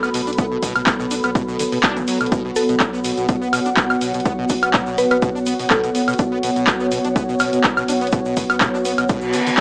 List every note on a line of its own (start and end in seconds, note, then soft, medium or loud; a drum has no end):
0.00 0.11 F#1 medium
0.00 9.60 B3 loud
0.00 9.60 B3 medium
0.00 0.09 B3 medium
0.00 9.60 F#4 medium
0.00 2.31 A4 medium
0.00 9.60 C#5 medium
0.00 2.83 B5 medium
0.00 high woodblock medium
0.00 shaker soft
0.14 0.59 B1 medium
0.14 0.21 B2 loud
0.14 open hi-hat loud
0.14 shaker medium
0.27 0.31 D4 medium
0.27 closed hi-hat soft
0.27 shaker soft
0.33 closed hi-hat medium
0.38 0.46 B3 medium
0.38 kick loud
0.38 closed hi-hat medium
0.38 shaker soft
0.51 0.58 B2 medium
0.63 0.73 F#1 medium
0.63 0.73 B2 medium
0.63 kick medium
0.63 open hi-hat loud
0.63 shaker medium
0.75 1.20 B1 medium
0.75 0.82 B2 medium
0.75 closed hi-hat medium
0.75 high woodblock medium
0.75 shaker soft
0.86 0.94 B3 medium
0.86 kick loud
0.86 clap loud
0.86 closed hi-hat medium
0.86 shaker medium
1.00 1.06 B2 loud
1.00 shaker soft
1.11 1.15 D4 medium
1.11 open hi-hat loud
1.11 shaker loud
1.23 1.33 B1 loud
1.23 1.30 B3 medium
1.23 closed hi-hat medium
1.23 high woodblock medium
1.23 shaker soft
1.35 1.42 B2 medium
1.35 kick loud
1.35 closed hi-hat medium
1.35 shaker medium
1.48 1.68 B1 medium
1.48 1.57 B2 medium
1.48 shaker soft
1.59 1.64 D3 medium
1.59 open hi-hat loud
1.59 shaker loud
1.72 1.92 F#1 medium
1.72 1.79 B2 loud
1.72 open hi-hat medium
1.72 shaker soft
1.83 1.98 D4 loud
1.83 kick loud
1.83 clap loud
1.83 closed hi-hat medium
1.83 shaker soft
1.97 2.06 B1 medium
1.97 2.03 B2 loud
1.97 closed hi-hat soft
1.97 shaker soft
2.07 2.18 F#3 medium
2.07 open hi-hat loud
2.07 shaker medium
2.20 2.30 B1 medium
2.20 2.27 B2 medium
2.20 closed hi-hat soft
2.20 high woodblock medium
2.20 shaker soft
2.26 closed hi-hat medium
2.32 2.52 B1 loud
2.32 2.43 B2 medium
2.32 6.18 F#5 medium
2.32 kick loud
2.32 closed hi-hat medium
2.32 shaker medium
2.45 2.51 B2 medium
2.56 2.67 F#1 medium
2.56 2.63 B3 medium
2.56 2.72 A4 medium
2.56 open hi-hat loud
2.56 shaker loud
2.69 3.14 B1 medium
2.69 2.75 B2 loud
2.69 closed hi-hat medium
2.69 shaker soft
2.80 2.85 D4 medium
2.80 9.60 F#5 medium
2.80 kick loud
2.80 clap loud
2.80 closed hi-hat medium
2.80 shaker soft
2.93 2.99 B3 medium
2.93 shaker soft
3.04 3.12 B2 medium
3.04 open hi-hat loud
3.04 shaker medium
3.17 3.27 B1 loud
3.17 3.27 B2 medium
3.17 closed hi-hat medium
3.17 shaker soft
3.28 3.39 F#1 loud
3.28 3.36 B2 medium
3.28 kick loud
3.28 closed hi-hat medium
3.28 shaker soft
3.42 3.48 B3 medium
3.42 shaker soft
3.53 3.98 F#1 medium
3.53 3.60 B2 loud
3.53 open hi-hat loud
3.53 high woodblock medium
3.53 shaker medium
3.65 3.70 D4 medium
3.65 closed hi-hat medium
3.65 shaker soft
3.77 3.84 B3 medium
3.77 kick loud
3.77 clap loud
3.77 closed hi-hat medium
3.77 shaker soft
3.90 3.96 B2 medium
3.90 high woodblock medium
3.90 shaker soft
4.01 4.46 B1 medium
4.01 4.12 B2 medium
4.01 open hi-hat loud
4.01 shaker medium
4.14 4.20 B2 medium
4.14 closed hi-hat soft
4.14 shaker soft
4.20 closed hi-hat medium
4.25 4.33 B3 medium
4.25 kick loud
4.25 closed hi-hat medium
4.25 shaker medium
4.38 4.45 B2 loud
4.49 4.60 F#1 medium
4.49 4.54 D4 medium
4.49 kick medium
4.49 open hi-hat loud
4.49 shaker medium
4.63 5.07 B1 medium
4.63 4.69 B3 medium
4.63 closed hi-hat medium
4.63 high woodblock medium
4.63 shaker soft
4.73 4.81 B2 medium
4.73 kick loud
4.73 clap loud
4.73 closed hi-hat medium
4.73 shaker soft
4.86 4.96 B2 medium
4.86 shaker soft
4.98 5.05 B2 medium
4.98 5.06 B4 medium
4.98 open hi-hat loud
4.98 shaker medium
5.10 5.20 B1 loud
5.10 5.17 B3 medium
5.10 5.18 B4 medium
5.10 closed hi-hat medium
5.10 high woodblock medium
5.10 shaker soft
5.22 5.29 B2 loud
5.22 kick loud
5.22 closed hi-hat medium
5.22 shaker soft
5.35 5.55 B1 medium
5.35 5.39 D4 medium
5.35 shaker soft
5.46 5.54 B3 medium
5.46 open hi-hat loud
5.46 shaker loud
5.59 5.79 F#1 loud
5.59 5.66 B2 medium
5.59 open hi-hat medium
5.59 shaker soft
5.70 5.81 B2 medium
5.70 6.39 A4 medium
5.70 kick loud
5.70 clap loud
5.70 closed hi-hat medium
5.70 shaker medium
5.84 6.16 F#1 loud
5.84 5.90 B2 medium
5.84 closed hi-hat soft
5.84 shaker soft
5.95 6.02 B3 medium
5.95 open hi-hat loud
5.95 shaker medium
6.08 6.14 B2 loud
6.08 closed hi-hat soft
6.08 high woodblock medium
6.08 shaker soft
6.13 closed hi-hat medium
6.18 6.39 B1 loud
6.18 6.23 D4 medium
6.18 9.60 C#5 medium
6.18 kick loud
6.18 closed hi-hat medium
6.18 shaker soft
6.32 6.38 B3 medium
6.43 6.54 F#1 medium
6.43 6.50 B2 medium
6.43 open hi-hat loud
6.43 shaker medium
6.56 7.01 B1 medium
6.56 6.65 B2 medium
6.56 closed hi-hat medium
6.56 shaker soft
6.67 6.75 B2 medium
6.67 kick loud
6.67 clap loud
6.67 closed hi-hat medium
6.67 shaker medium
6.80 6.87 B3 medium
6.80 shaker soft
6.91 6.99 B2 loud
6.91 open hi-hat loud
6.91 shaker medium
7.04 7.14 B1 loud
7.04 7.08 D4 medium
7.04 closed hi-hat medium
7.04 shaker soft
7.16 7.26 F#1 loud
7.16 7.23 B3 medium
7.16 kick loud
7.16 closed hi-hat medium
7.16 shaker soft
7.29 7.35 B2 medium
7.29 shaker soft
7.39 7.85 F#1 medium
7.39 7.51 B2 medium
7.39 open hi-hat loud
7.39 high woodblock medium
7.39 shaker medium
7.53 7.59 B2 medium
7.53 closed hi-hat medium
7.53 shaker soft
7.64 7.71 B3 medium
7.64 kick loud
7.64 clap loud
7.64 closed hi-hat medium
7.64 shaker soft
7.77 7.83 B2 loud
7.77 high woodblock medium
7.77 shaker soft
7.88 8.33 B1 medium
7.88 7.93 D4 medium
7.88 open hi-hat loud
7.88 shaker medium
8.01 8.08 B3 medium
8.01 closed hi-hat soft
8.01 shaker soft
8.07 closed hi-hat medium
8.12 8.20 B2 medium
8.12 kick loud
8.12 closed hi-hat medium
8.12 shaker medium
8.25 8.35 B2 medium
8.25 shaker soft
8.36 8.47 F#1 medium
8.36 8.44 B2 medium
8.36 kick medium
8.36 open hi-hat loud
8.36 shaker medium
8.50 8.94 B1 medium
8.50 8.56 B3 medium
8.50 closed hi-hat medium
8.50 high woodblock medium
8.50 shaker soft
8.61 8.68 B2 loud
8.61 kick loud
8.61 clap loud
8.61 closed hi-hat medium
8.61 shaker medium
8.74 8.78 D4 medium
8.74 shaker soft
8.85 8.92 B3 medium
8.85 open hi-hat loud
8.85 shaker medium
8.98 9.07 B1 loud
8.98 9.04 B2 medium
8.98 closed hi-hat medium
8.98 high woodblock medium
8.98 shaker soft
9.09 9.20 B2 medium
9.09 kick loud
9.09 closed hi-hat medium
9.09 reverse cymbal medium
9.09 shaker medium
9.21 9.33 B1 medium
9.21 9.35 B2 medium
9.21 shaker soft
9.33 9.44 F#1 medium
9.33 9.41 D3 loud
9.33 open hi-hat loud
9.33 shaker medium
9.47 9.60 F#1 loud
9.47 9.50 D3 loud
9.47 open hi-hat medium
9.47 shaker soft
9.57 clap loud